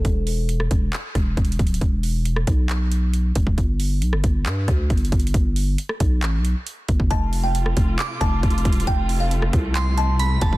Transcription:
<<
  \new Staff \with { instrumentName = "Synth bell" } { \time 4/4 \key f \lydian \tempo 4 = 136 r1 | r1 | r1 | r1 |
r2 d'''2 | r2 c'''4 b''8 a''8 | }
  \new Staff \with { instrumentName = "Kalimba" } { \time 4/4 \key f \lydian r1 | r1 | r1 | r1 |
a''8. g''4.~ g''16 a''4. | g''8. f''4.~ f''16 a''4. | }
  \new Staff \with { instrumentName = "String section" } { \time 4/4 \key f \lydian r1 | r1 | r1 | r1 |
<c a f'>1~ | <c a f'>1 | }
  \new Staff \with { instrumentName = "808-style bass" } { \clef bass \time 4/4 \key f \lydian e,,4. e,,8 r8 e,,8 e,,8 d,,8 | e,,4. b,,2 e,,8 | g,,4 b,,16 g,,16 g,,8 g,8 d,8 g,,8 g,,8 | g,,4 r8 b,,8 a,,16. b,,16. r8. g,,8 |
f,,4. f,,8 r8 f,,8 f,,8 e,,8 | f,,4. c,2 f,,8 | }
  \new DrumStaff \with { instrumentName = "Drums" } \drummode { \time 4/4 <hh bd>8 hho8 hh16 ss16 <hh bd>8 <hc hh>8 <hh bd ss>8 \tuplet 3/2 { <hh bd>16 hh16 hh16 <hh bd>16 hh16 hh16 } | <hh bd>8 hho8 hh16 ss16 <hh bd>8 <hc hh>8 hh8 hh8 <hh bd>16 bd16 | <hh bd>8 hho8 hh16 ss16 <hh bd>8 <hc hh>8 <hh bd ss>8 \tuplet 3/2 { <hh bd>16 hh16 hh16 <hh bd>16 hh16 hh16 } | <hh bd>8 hho8 hh16 ss16 <hh bd>8 <hc hh>8 hh8 hh8 <hh bd>16 bd16 |
<hh bd>8 hho8 hh16 ss16 <hh bd>8 <hc hh>8 <hh bd ss>8 \tuplet 3/2 { <hh bd>16 hh16 hh16 <hh bd>16 hh16 hh16 } | <hh bd>8 hho8 hh16 ss16 <hh bd>8 <hc hh>8 hh8 hh8 <hh bd>16 bd16 | }
>>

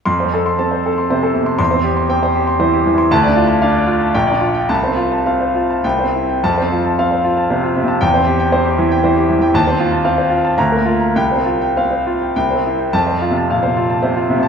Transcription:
<<
  \new Staff \with { instrumentName = "Grand piano" } { \time 3/4 \key f \major \tempo 4 = 114 << { c'''8 r2 r8 | c'''8 r2 r8 | a''8 r4. g''8 r8 | a''8 r4. g''8 r8 |
a''8 r2 r8 | g''8 r2 r8 | a''8 r4. bes''8 r8 | g''8 r4. g''8 r8 |
a''8 r2 r8 | } \\ { r16 c''16 a'16 c'''16 a''16 c''16 a'16 c'''16 c''16 a'16 c16 c'''16 | r16 c''16 g'16 c'''16 g''16 c''16 g'16 c'''16 c''16 g'16 e16 c'''16 | r16 d''16 f'16 a''16 f''16 d''16 f'16 a''16 r16 d''16 f'16 g''16 | r16 c''16 f'16 a''16 f''16 c''16 f'16 a''16 r16 c''16 e'16 g''16 |
r16 c''16 f'16 a''16 f''16 c''16 f'16 a''16 c''16 f'16 c16 a''16 | r16 c''16 g'16 g''16 c''16 g'16 e16 g''16 c''16 g'16 e16 g''16 | r16 c''16 f'16 a''16 f''16 c''16 f'16 a''16 r16 bes'16 f'16 bes''16 | r16 c''16 f'16 g''16 f''16 c''16 f'16 g''16 r16 c''16 e'16 g''16 |
r16 c''16 f'16 a''16 f''16 c''16 f'16 a''16 c''16 f'16 c16 a''16 | } >> }
  \new Staff \with { instrumentName = "Grand piano" } { \clef bass \time 3/4 \key f \major \tuplet 3/2 { f,8 c'4 } c'8 r8 \tuplet 3/2 { c4 c8 } | \tuplet 3/2 { e,8 c'4 } c'8 r8 \tuplet 3/2 { e4 e8 } | \tuplet 3/2 { d,8 d'4 } d'8 r8 \tuplet 3/2 { bes,,8 d'4 } | \tuplet 3/2 { c,8 c'4 } c'8 r8 \tuplet 3/2 { c,8 c'4 } |
\tuplet 3/2 { f,8 c'4 } c'8 r8 \tuplet 3/2 { c4 c8 } | \tuplet 3/2 { e,8 c'4 } c'8 r8 \tuplet 3/2 { e4 e8 } | \tuplet 3/2 { ees,8 c'4 } c'8 r8 \tuplet 3/2 { d,8 bes4 } | \tuplet 3/2 { c,8 c'4 } c'8 r8 \tuplet 3/2 { c,8 c'4 } |
\tuplet 3/2 { f,4 c8 bes,8 c4 c4 c8 } | }
>>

